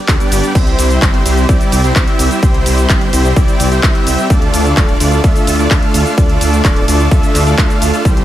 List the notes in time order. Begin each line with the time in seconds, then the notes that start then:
0.08 D2 G3 B3 D4 G4 A4, kick, clap, closed hi-hat, ride, shaker
0.20 G3 B3 D4 G4 D5, closed hi-hat, shaker
0.32 G1, open hi-hat, ride, shaker
0.43 closed hi-hat, shaker
0.55 C2 G3 C4 E4 C5, kick, closed hi-hat, ride, crash, shaker
0.67 closed hi-hat
0.79 C2, open hi-hat, ride, shaker
0.90 closed hi-hat, shaker
1.02 G1 G3 C4 E4 G4, kick, clap, closed hi-hat, ride, shaker
1.14 closed hi-hat
1.26 C2 G3 C4 E4 G4 C5, open hi-hat, ride, shaker
1.37 closed hi-hat, shaker
1.49 C2 G3 C4 E4 G4 D5, kick, closed hi-hat, ride, shaker
1.61 closed hi-hat, shaker
1.72 C2, open hi-hat, ride, shaker
1.84 G3 C4 E4 G4 C5, closed hi-hat, shaker
1.96 C2 G3 G4, kick, clap, closed hi-hat, ride, shaker
2.07 closed hi-hat
2.19 C2, open hi-hat, ride, shaker
2.31 closed hi-hat, shaker
2.43 C2 G3 C4 E4 G4 C5, kick, closed hi-hat, ride, shaker
2.54 closed hi-hat
2.66 C2, open hi-hat, ride, shaker
2.78 closed hi-hat, shaker
2.90 G1 C4 E4 C5, kick, clap, closed hi-hat, ride, shaker
3.01 closed hi-hat
3.13 C2 G3 C4 E4 G4 C5, open hi-hat, ride, shaker
3.25 closed hi-hat, shaker
3.36 C2 G3 C4 E4 G4 D5, kick, closed hi-hat, ride, shaker
3.48 closed hi-hat, shaker
3.60 C2, open hi-hat, ride, shaker
3.72 G3 C4 E4 G4 C5, closed hi-hat, shaker
3.83 C2 G3 C4 E4 E5, kick, clap, closed hi-hat, ride, shaker
3.95 closed hi-hat
4.07 C2, open hi-hat, ride, shaker
4.18 closed hi-hat, shaker
4.30 D2 A3 D4 F4 A4 D5, kick, closed hi-hat, ride, shaker
4.42 closed hi-hat
4.54 D2, open hi-hat, ride, shaker
4.65 closed hi-hat, shaker
4.77 D1 A3 D4 F4 A4 D5, kick, clap, closed hi-hat, ride, shaker
4.89 closed hi-hat
5.00 D2 A3 D4 F4 A4 D5, open hi-hat, ride, shaker
5.12 closed hi-hat, shaker
5.24 D2 A3 D4 F4 A4 E5, kick, closed hi-hat, ride, shaker
5.36 closed hi-hat, shaker
5.47 D2, open hi-hat, ride, shaker
5.59 A3 D4 F4 A4 D5, closed hi-hat, shaker
5.71 D2 A3 D4 F4 A4, kick, clap, closed hi-hat, ride, shaker
5.82 closed hi-hat
5.94 D2, open hi-hat, ride, shaker
6.06 closed hi-hat, shaker
6.18 D2 A3 D4 F4 A4 D5, kick, closed hi-hat, ride, shaker
6.29 closed hi-hat
6.41 D2, open hi-hat, ride, shaker
6.53 closed hi-hat, shaker
6.64 D1 D4 D5, kick, clap, closed hi-hat, ride, shaker
6.76 closed hi-hat
6.88 D2 A3 D4 F4 A4 D5, open hi-hat, ride, shaker
7.00 closed hi-hat, shaker
7.11 D2 A3 D4 F4 A4 E5, kick, closed hi-hat, ride, shaker
7.23 closed hi-hat, shaker
7.35 D2, clap, open hi-hat, ride, shaker
7.47 A3 D4 F4 A4 D5, closed hi-hat, shaker
7.58 D2, kick, clap, closed hi-hat, ride, shaker
7.70 closed hi-hat, shaker
7.82 D2, open hi-hat, ride, shaker
7.94 closed hi-hat, shaker
8.05 C2 G3 C4 E4 G4 C5, kick, closed hi-hat, ride, shaker
8.17 closed hi-hat